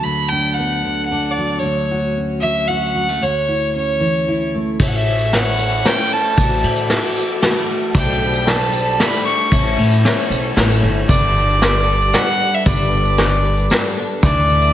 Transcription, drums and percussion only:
4.79 kick medium
4.79 ride medium
4.79 tambourine medium
5.18 tambourine medium
5.32 snare medium
5.32 ride medium
5.32 tambourine soft
5.44 tambourine soft
5.57 tambourine medium
5.85 snare medium
5.85 ride medium
5.98 tambourine medium
6.37 kick loud
6.37 ride medium
6.37 tambourine loud
6.64 ride medium
6.76 tambourine medium
6.90 snare medium
6.90 ride medium
6.90 tambourine soft
7.03 tambourine soft
7.16 tambourine medium
7.42 snare medium
7.42 ride medium
7.95 kick loud
7.95 ride medium
7.95 tambourine medium
8.34 tambourine medium
8.47 snare medium
8.47 ride medium
8.47 tambourine soft
8.60 tambourine soft
8.73 tambourine medium
9.00 snare medium
9.00 ride medium
9.13 tambourine medium
9.52 kick loud
9.52 ride medium
9.52 tambourine medium
9.79 ride medium
9.91 tambourine medium
10.05 snare medium
10.05 ride medium
10.18 tambourine soft
10.31 tambourine medium
10.57 snare medium
10.57 ride medium
10.70 tambourine medium
11.09 kick loud
11.09 closed hi-hat medium
11.09 tambourine medium
11.36 tambourine soft
11.49 tambourine soft
11.62 snare medium
11.62 closed hi-hat medium
11.62 tambourine medium
12.01 tambourine soft
12.13 snare medium
12.13 closed hi-hat medium
12.13 tambourine medium
12.66 kick loud
12.66 closed hi-hat medium
12.66 tambourine loud
12.92 tambourine soft
13.05 tambourine soft
13.18 snare medium
13.18 closed hi-hat medium
13.18 tambourine loud
13.57 tambourine soft
13.70 snare loud
13.70 closed hi-hat medium
13.70 tambourine medium
14.23 kick loud
14.23 closed hi-hat medium
14.23 tambourine medium
14.49 tambourine soft
14.62 tambourine soft

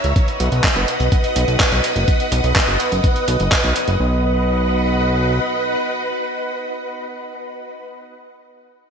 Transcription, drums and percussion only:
0.04 closed hi-hat soft
0.16 kick loud
0.16 closed hi-hat medium
0.28 closed hi-hat soft
0.40 closed hi-hat medium
0.52 closed hi-hat soft
0.64 kick loud
0.64 clap loud
0.64 closed hi-hat medium
0.76 closed hi-hat soft
0.88 closed hi-hat medium
1.00 closed hi-hat soft
1.12 kick loud
1.12 closed hi-hat medium
1.24 closed hi-hat soft
1.36 closed hi-hat medium
1.48 closed hi-hat soft
1.60 kick loud
1.60 clap loud
1.60 closed hi-hat medium
1.72 closed hi-hat soft
1.84 closed hi-hat loud
1.96 closed hi-hat soft
2.08 kick loud
2.08 closed hi-hat medium
2.20 closed hi-hat soft
2.32 closed hi-hat medium
2.44 closed hi-hat soft
2.56 kick loud
2.56 clap loud
2.56 closed hi-hat medium
2.68 closed hi-hat soft
2.80 closed hi-hat medium
2.92 closed hi-hat soft
3.04 kick loud
3.04 closed hi-hat medium
3.16 closed hi-hat soft
3.28 closed hi-hat loud
3.40 closed hi-hat soft
3.52 kick medium
3.52 clap loud
3.52 closed hi-hat medium
3.64 closed hi-hat soft
3.76 closed hi-hat medium
3.88 closed hi-hat soft

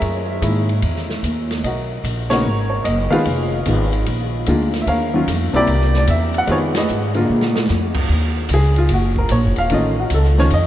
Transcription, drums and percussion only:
0.01 kick soft
0.01 ride medium
0.42 kick soft
0.42 hi-hat pedal medium
0.42 ride medium
0.69 ride soft
0.82 kick soft
0.82 ride medium
0.96 snare soft
1.09 snare medium
1.23 kick soft
1.23 hi-hat pedal medium
1.23 ride medium
1.51 snare medium
1.51 ride soft
1.64 kick soft
1.64 ride medium
2.04 kick soft
2.04 hi-hat pedal medium
2.04 ride medium
2.31 snare medium
2.31 ride medium
2.85 kick soft
2.85 hi-hat pedal medium
2.85 ride medium
3.12 ride soft
3.25 kick soft
3.25 ride medium
3.66 kick soft
3.66 hi-hat pedal medium
3.66 ride medium
3.93 ride soft
4.06 kick soft
4.06 ride medium
4.46 kick soft
4.46 hi-hat pedal medium
4.46 ride medium
4.74 snare soft
4.74 ride soft
4.87 kick soft
4.87 ride medium
5.27 kick soft
5.27 snare soft
5.27 hi-hat pedal medium
5.27 ride medium
5.54 kick soft
5.54 ride soft
5.67 kick soft
5.67 ride medium
5.81 snare soft
5.94 snare medium
6.07 kick soft
6.07 hi-hat pedal medium
6.07 ride medium
6.34 ride soft
6.47 kick soft
6.47 ride medium
6.75 snare medium
6.75 ride medium
6.88 hi-hat pedal medium
7.14 ride soft
7.41 snare medium
7.55 snare medium
7.68 snare medium
7.68 hi-hat pedal medium
7.94 kick medium
7.94 crash medium
8.09 kick soft
8.49 kick soft
8.49 hi-hat pedal medium
8.49 ride medium
8.76 ride soft
8.89 kick soft
8.89 ride medium
9.16 kick medium
9.29 kick soft
9.29 hi-hat pedal medium
9.29 ride medium
9.56 ride soft
9.70 kick soft
9.70 ride medium
10.10 kick soft
10.10 hi-hat pedal medium
10.10 ride medium
10.23 snare soft
10.38 snare soft
10.50 kick soft
10.50 ride medium

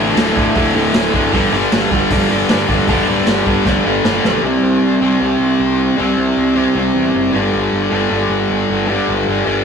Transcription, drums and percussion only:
0.17 snare loud
0.17 open hi-hat medium
0.36 kick medium
0.55 kick loud
0.55 open hi-hat medium
0.94 snare loud
0.94 open hi-hat medium
1.14 kick medium
1.33 kick loud
1.33 open hi-hat medium
1.72 snare loud
1.72 open hi-hat medium
1.91 kick medium
2.10 kick loud
2.10 open hi-hat medium
2.49 snare loud
2.49 open hi-hat medium
2.69 kick medium
2.87 kick loud
2.87 open hi-hat medium
3.27 snare loud
3.27 open hi-hat medium
3.46 kick medium
3.65 kick loud
3.65 snare medium
4.04 snare loud
4.24 snare loud

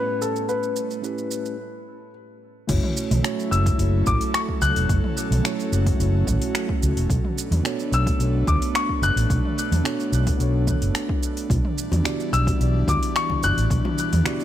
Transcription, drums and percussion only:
0.22 shaker medium
0.36 shaker soft
0.49 shaker soft
0.63 shaker soft
0.76 shaker medium
0.91 shaker soft
1.04 shaker soft
1.18 shaker soft
1.31 shaker medium
1.45 shaker soft
2.69 kick loud
2.69 open hi-hat soft
2.69 crash medium
2.69 shaker soft
2.83 mid tom medium
2.97 shaker medium
3.11 mid tom medium
3.11 open hi-hat medium
3.11 shaker soft
3.24 finger snap loud
3.24 open hi-hat medium
3.24 shaker soft
3.40 shaker soft
3.52 shaker medium
3.66 kick loud
3.66 open hi-hat medium
3.66 shaker soft
3.79 open hi-hat soft
3.79 shaker soft
4.06 kick loud
4.06 shaker medium
4.21 open hi-hat medium
4.21 shaker soft
4.34 finger snap loud
4.34 open hi-hat soft
4.34 shaker soft
4.49 kick medium
4.62 shaker medium
4.76 open hi-hat medium
4.76 shaker soft
4.89 kick loud
4.89 open hi-hat soft
4.89 shaker soft
5.04 mid tom medium
5.17 shaker medium
5.32 mid tom medium
5.32 open hi-hat medium
5.32 shaker soft
5.45 finger snap loud
5.45 open hi-hat soft
5.45 shaker soft
5.60 shaker soft
5.73 shaker medium
5.86 kick loud
5.86 open hi-hat medium
5.86 shaker soft
6.00 open hi-hat soft
6.00 shaker soft
6.27 kick medium
6.27 mid tom medium
6.27 shaker medium
6.42 open hi-hat medium
6.42 shaker soft
6.55 finger snap loud
6.55 open hi-hat soft
6.55 shaker soft
6.69 kick loud
6.83 shaker medium
6.97 open hi-hat medium
6.97 shaker soft
7.10 kick loud
7.10 open hi-hat soft
7.10 shaker soft
7.25 mid tom medium
7.38 shaker medium
7.52 mid tom medium
7.52 open hi-hat medium
7.52 shaker soft
7.65 finger snap loud
7.65 open hi-hat soft
7.65 shaker medium
7.79 shaker soft
7.93 shaker medium
8.07 kick loud
8.07 open hi-hat medium
8.07 shaker soft
8.20 open hi-hat soft
8.20 shaker soft
8.47 kick loud
8.47 shaker medium
8.62 open hi-hat medium
8.62 shaker soft
8.75 finger snap loud
8.75 open hi-hat soft
8.75 shaker soft
8.89 kick medium
9.03 shaker medium
9.17 open hi-hat medium
9.17 shaker soft
9.30 kick loud
9.30 open hi-hat soft
9.30 shaker soft
9.45 mid tom medium
9.58 shaker medium
9.72 mid tom medium
9.72 open hi-hat soft
9.72 shaker soft
9.85 finger snap loud
9.85 open hi-hat soft
9.85 shaker soft
10.00 shaker soft
10.13 shaker medium
10.27 kick loud
10.27 open hi-hat medium
10.27 shaker soft
10.40 open hi-hat soft
10.40 shaker soft
10.67 kick medium
10.67 mid tom medium
10.67 shaker medium
10.82 open hi-hat medium
10.82 shaker soft
10.95 finger snap loud
10.95 open hi-hat soft
10.95 shaker soft
11.09 kick loud
11.23 shaker medium
11.37 open hi-hat medium
11.37 shaker soft
11.50 kick loud
11.50 open hi-hat soft
11.50 high bongo medium
11.50 shaker soft
11.65 mid tom medium
11.78 shaker medium
11.92 mid tom medium
11.92 open hi-hat soft
11.92 high bongo medium
11.92 shaker soft
12.04 finger snap loud
12.04 open hi-hat soft
12.04 high conga medium
12.04 shaker soft
12.20 shaker soft
12.33 shaker medium
12.47 kick loud
12.47 open hi-hat medium
12.47 high bongo soft
12.47 shaker soft
12.61 open hi-hat soft
12.61 shaker soft
12.88 kick loud
12.88 high bongo medium
12.88 high conga medium
12.88 shaker medium
13.03 open hi-hat soft
13.03 shaker soft
13.16 finger snap medium
13.16 open hi-hat soft
13.16 shaker soft
13.30 kick medium
13.30 high conga medium
13.43 high bongo soft
13.43 shaker medium
13.58 open hi-hat medium
13.58 shaker soft
13.70 kick loud
13.70 open hi-hat soft
13.70 shaker soft
13.85 mid tom medium
13.85 high bongo medium
13.98 shaker medium
14.13 mid tom medium
14.13 open hi-hat medium
14.13 shaker soft
14.25 finger snap loud
14.25 open hi-hat soft
14.25 high conga medium
14.25 shaker soft
14.39 high bongo medium
14.39 shaker soft

